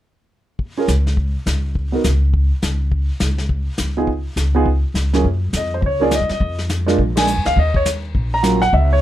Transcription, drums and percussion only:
0.59 brush sweep soft
0.59 kick soft
0.88 snare soft
0.88 hi-hat pedal medium
1.07 snare soft
1.17 brush sweep soft
1.17 kick soft
1.46 snare soft
1.46 hi-hat pedal soft
1.75 brush sweep soft
1.75 kick soft
2.04 snare medium
2.04 hi-hat pedal medium
2.34 brush sweep soft
2.34 kick soft
2.62 snare medium
2.62 hi-hat pedal medium
2.92 brush sweep soft
2.92 kick soft
3.20 snare medium
3.20 hi-hat pedal soft
3.38 snare soft
3.49 brush sweep soft
3.49 kick soft
3.78 snare medium
3.78 hi-hat pedal soft
4.07 brush sweep soft
4.07 kick soft
4.37 snare medium
4.37 hi-hat pedal soft
4.65 brush sweep soft
4.65 kick soft
4.95 snare medium
4.95 hi-hat pedal soft
5.14 snare soft
5.24 brush sweep soft
5.24 kick soft
5.53 snare medium
5.53 hi-hat pedal medium
5.82 brush sweep soft
5.82 kick soft
6.11 snare medium
6.11 hi-hat pedal soft
6.29 snare soft
6.40 brush sweep soft
6.40 kick soft
6.59 snare soft
6.69 snare medium
6.69 hi-hat pedal soft
6.88 snare soft
6.99 brush sweep soft
6.99 kick soft
7.17 snare medium
7.17 ride medium
7.27 hi-hat pedal medium
7.45 snare soft
7.56 brush sweep soft
7.56 kick soft
7.74 kick soft
7.85 snare medium
7.85 hi-hat pedal medium
8.15 brush sweep soft
8.15 kick soft
8.43 snare medium
8.43 hi-hat pedal medium
8.62 snare soft
8.73 brush sweep soft
8.73 kick soft

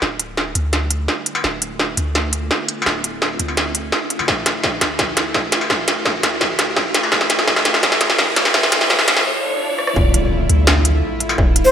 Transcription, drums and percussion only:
0.02 snare medium
0.20 closed hi-hat medium
0.37 snare medium
0.55 closed hi-hat medium
0.73 snare medium
0.73 closed hi-hat soft
0.91 closed hi-hat medium
1.08 snare medium
1.26 closed hi-hat medium
1.35 struck metal medium
1.44 snare medium
1.62 closed hi-hat medium
1.79 snare medium
1.97 closed hi-hat medium
2.15 snare medium
2.15 closed hi-hat soft
2.33 closed hi-hat medium
2.51 snare medium
2.69 closed hi-hat medium
2.82 struck metal medium
2.86 snare medium
3.04 closed hi-hat medium
3.22 snare medium
3.39 closed hi-hat medium
3.48 struck metal soft
3.57 snare medium
3.57 closed hi-hat soft
3.75 closed hi-hat medium
3.92 snare medium
4.10 closed hi-hat medium
4.19 struck metal medium
4.28 kick loud
4.28 snare medium
4.46 snare medium
4.46 closed hi-hat medium
4.63 kick loud
4.63 snare medium
4.81 snare medium
4.81 closed hi-hat medium
4.99 kick loud
4.99 snare medium
4.99 closed hi-hat soft
5.17 snare medium
5.17 closed hi-hat medium
5.34 kick medium
5.34 snare medium
5.52 snare medium
5.52 closed hi-hat medium
5.61 struck metal medium
5.70 kick loud
5.70 snare medium
5.88 snare medium
5.88 closed hi-hat medium
6.05 kick loud
6.05 snare medium
6.23 snare medium
6.23 closed hi-hat medium
6.41 kick medium
6.41 snare medium
6.41 closed hi-hat soft
6.59 snare medium
6.59 closed hi-hat medium
6.76 kick loud
6.76 snare medium
6.94 snare medium
6.94 closed hi-hat medium
7.03 struck metal medium
7.12 kick loud
7.12 snare medium
7.21 snare medium
7.30 snare medium
7.30 closed hi-hat medium
7.39 snare medium
7.47 kick loud
7.47 snare medium
7.56 snare medium
7.65 snare medium
7.65 closed hi-hat medium
7.74 snare medium
7.83 kick loud
7.83 snare loud
7.83 closed hi-hat soft
7.92 snare medium
8.01 snare medium
8.01 closed hi-hat medium
8.10 snare medium
8.18 kick medium
8.18 snare loud
8.36 snare loud
8.36 closed hi-hat medium
8.45 snare medium
8.45 struck metal medium
8.54 kick loud
8.54 snare loud
8.63 snare medium
8.72 snare loud
8.72 closed hi-hat medium
8.81 snare medium
8.90 kick loud
8.90 snare loud
8.99 snare medium
9.08 snare loud
9.08 closed hi-hat medium
9.17 snare medium
9.79 cross-stick medium
9.87 cross-stick medium
9.96 kick loud
10.14 closed hi-hat medium
10.50 closed hi-hat medium
10.67 snare loud
10.67 closed hi-hat soft
10.85 closed hi-hat medium
11.20 closed hi-hat medium
11.29 tambourine soft
11.29 struck metal medium
11.38 kick loud
11.56 closed hi-hat medium

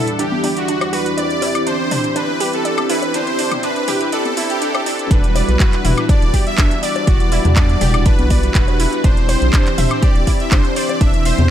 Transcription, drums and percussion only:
0.07 closed hi-hat medium
0.19 closed hi-hat medium
0.32 high conga medium
0.44 open hi-hat loud
0.44 high conga medium
0.57 closed hi-hat medium
0.68 closed hi-hat medium
0.81 closed hi-hat soft
0.81 high bongo medium
0.81 high woodblock medium
0.93 open hi-hat loud
1.06 closed hi-hat medium
1.18 closed hi-hat medium
1.30 closed hi-hat soft
1.42 open hi-hat loud
1.42 high bongo medium
1.55 closed hi-hat soft
1.55 high woodblock medium
1.67 closed hi-hat medium
1.91 open hi-hat loud
1.91 mid tom loud
2.04 closed hi-hat medium
2.16 closed hi-hat medium
2.16 high bongo medium
2.40 open hi-hat loud
2.53 closed hi-hat soft
2.65 closed hi-hat medium
2.78 closed hi-hat soft
2.78 high woodblock medium
2.89 open hi-hat loud
3.02 closed hi-hat medium
3.02 high bongo medium
3.14 closed hi-hat medium
3.27 closed hi-hat soft
3.39 open hi-hat loud
3.51 closed hi-hat soft
3.51 mid tom medium
3.51 high conga medium
3.51 high woodblock medium
3.63 closed hi-hat medium
3.76 closed hi-hat soft
3.88 open hi-hat loud
3.88 mid tom loud
4.01 closed hi-hat medium
4.12 closed hi-hat medium
4.25 closed hi-hat soft
4.25 high conga medium
4.37 open hi-hat loud
4.37 high conga medium
4.50 closed hi-hat soft
4.62 closed hi-hat medium
4.75 closed hi-hat soft
4.75 high bongo medium
4.75 high woodblock medium
4.86 open hi-hat loud
4.99 closed hi-hat soft
5.11 kick loud
5.11 closed hi-hat loud
5.24 closed hi-hat soft
5.35 open hi-hat loud
5.35 high bongo medium
5.48 closed hi-hat soft
5.60 kick loud
5.60 clap loud
5.60 closed hi-hat loud
5.73 clap soft
5.73 closed hi-hat soft
5.85 open hi-hat loud
5.85 mid tom medium
5.98 closed hi-hat soft
5.98 high woodblock medium
6.09 kick loud
6.09 closed hi-hat loud
6.09 high bongo medium
6.22 closed hi-hat soft
6.34 kick medium
6.34 open hi-hat loud
6.47 closed hi-hat soft
6.58 kick loud
6.58 clap loud
6.58 closed hi-hat medium
6.71 closed hi-hat soft
6.83 open hi-hat loud
6.96 closed hi-hat soft
6.96 high bongo medium
7.07 kick loud
7.07 closed hi-hat medium
7.20 closed hi-hat soft
7.32 open hi-hat loud
7.45 closed hi-hat soft
7.45 mid tom medium
7.45 high conga medium
7.56 kick loud
7.56 clap loud
7.56 closed hi-hat medium
7.69 closed hi-hat soft
7.81 open hi-hat loud
7.81 mid tom loud
7.94 closed hi-hat soft
7.94 high woodblock medium
8.06 kick loud
8.06 closed hi-hat loud
8.19 closed hi-hat soft
8.19 high conga medium
8.30 kick medium
8.30 open hi-hat loud
8.30 high conga medium
8.43 closed hi-hat soft
8.55 kick loud
8.55 clap loud
8.55 closed hi-hat medium
8.68 closed hi-hat soft
8.68 high bongo medium
8.80 open hi-hat loud
8.93 closed hi-hat soft
9.04 kick loud
9.04 closed hi-hat medium
9.17 closed hi-hat soft
9.29 open hi-hat loud
9.29 high bongo medium
9.42 closed hi-hat soft
9.53 kick loud
9.53 clap loud
9.53 closed hi-hat medium
9.66 clap soft
9.66 closed hi-hat soft
9.78 open hi-hat loud
9.78 mid tom loud
9.91 closed hi-hat soft
9.91 high woodblock medium
10.03 kick loud
10.03 closed hi-hat medium
10.03 high bongo medium
10.15 closed hi-hat soft
10.27 kick medium
10.27 open hi-hat loud
10.40 closed hi-hat soft
10.51 kick loud
10.51 clap loud
10.51 closed hi-hat medium
10.65 closed hi-hat soft
10.76 open hi-hat loud
10.89 closed hi-hat soft
10.89 high bongo medium
11.01 kick loud
11.01 closed hi-hat medium
11.14 closed hi-hat soft
11.25 open hi-hat loud
11.38 closed hi-hat soft
11.38 mid tom medium
11.38 high conga medium

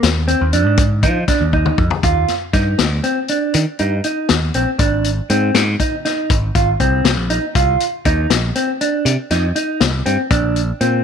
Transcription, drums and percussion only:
0.03 snare loud
0.03 closed hi-hat medium
0.28 closed hi-hat medium
0.53 closed hi-hat medium
0.77 kick loud
0.77 closed hi-hat medium
1.03 kick medium
1.03 closed hi-hat medium
1.28 kick medium
1.28 snare soft
1.28 closed hi-hat medium
1.53 kick medium
1.66 mid tom medium
1.78 kick medium
1.90 floor tom medium
2.03 kick medium
2.03 closed hi-hat medium
2.28 snare soft
2.28 closed hi-hat soft
2.53 kick medium
2.53 snare soft
2.53 closed hi-hat soft
2.79 snare medium
2.79 closed hi-hat medium
3.04 closed hi-hat medium
3.28 closed hi-hat medium
3.54 closed hi-hat medium
3.79 closed hi-hat medium
4.04 closed hi-hat medium
4.29 snare loud
4.29 closed hi-hat medium
4.54 closed hi-hat medium
4.79 kick medium
4.79 closed hi-hat medium
5.04 closed hi-hat medium
5.30 closed hi-hat medium
5.55 snare medium
5.55 closed hi-hat medium
5.80 kick medium
5.80 closed hi-hat medium
6.05 snare soft
6.05 closed hi-hat medium
6.30 kick loud
6.30 closed hi-hat medium
6.55 kick medium
6.55 closed hi-hat medium
6.80 kick medium
6.80 closed hi-hat medium
7.05 snare loud
7.05 closed hi-hat medium
7.30 closed hi-hat medium
7.55 kick loud
7.55 closed hi-hat medium
7.80 closed hi-hat medium
8.05 kick medium
8.05 closed hi-hat medium
8.30 snare loud
8.30 closed hi-hat medium
8.55 closed hi-hat medium
8.81 closed hi-hat medium
9.06 closed hi-hat medium
9.30 snare soft
9.30 closed hi-hat medium
9.56 closed hi-hat medium
9.81 snare loud
9.81 closed hi-hat medium
10.06 closed hi-hat medium
10.30 kick loud
10.30 closed hi-hat medium
10.56 closed hi-hat medium
10.81 closed hi-hat medium

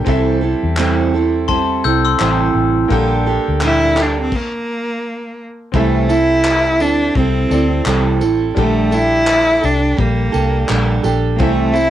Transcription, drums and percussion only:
0.07 kick loud
0.77 clap loud
1.48 kick loud
2.19 clap medium
2.90 kick loud
3.61 clap loud
3.97 clap medium
4.32 kick loud
4.32 crash medium
5.74 kick loud
6.10 tambourine medium
6.45 clap loud
6.80 tambourine medium
7.15 kick loud
7.51 tambourine medium
7.86 clap loud
8.21 tambourine medium
8.57 kick loud
8.92 tambourine medium
9.27 clap loud
9.64 tambourine medium
9.99 kick medium
10.34 tambourine medium
10.69 clap loud
11.04 tambourine medium
11.40 kick loud
11.76 tambourine medium

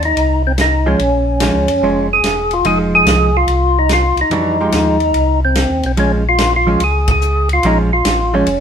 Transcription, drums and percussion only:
0.03 ride soft
0.17 ride medium
0.58 snare medium
0.58 hi-hat pedal medium
0.58 ride medium
0.99 ride soft
1.40 snare medium
1.40 hi-hat pedal medium
1.40 ride medium
1.68 ride medium
2.24 snare medium
2.24 hi-hat pedal soft
2.24 ride medium
2.51 ride soft
2.65 ride medium
3.07 snare medium
3.07 hi-hat pedal medium
3.07 ride medium
3.48 ride medium
3.89 snare medium
3.89 hi-hat pedal medium
3.89 ride medium
4.17 ride soft
4.31 ride soft
4.72 snare medium
4.72 hi-hat pedal soft
4.72 ride medium
5.00 ride soft
5.14 ride medium
5.55 snare medium
5.55 hi-hat pedal soft
5.55 ride medium
5.83 ride soft
5.97 ride soft
6.38 snare medium
6.38 hi-hat pedal medium
6.38 ride medium
6.80 ride medium
7.08 kick medium
7.08 ride medium
7.21 hi-hat pedal medium
7.49 ride soft
7.63 ride medium
8.05 snare medium
8.05 hi-hat pedal medium
8.05 ride medium
8.47 ride medium

